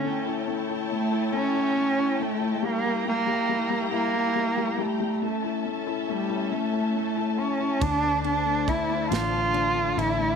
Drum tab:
RD |------|------|------|xxxxxx|
SD |------|------|------|---o--|
BD |------|------|------|o-o---|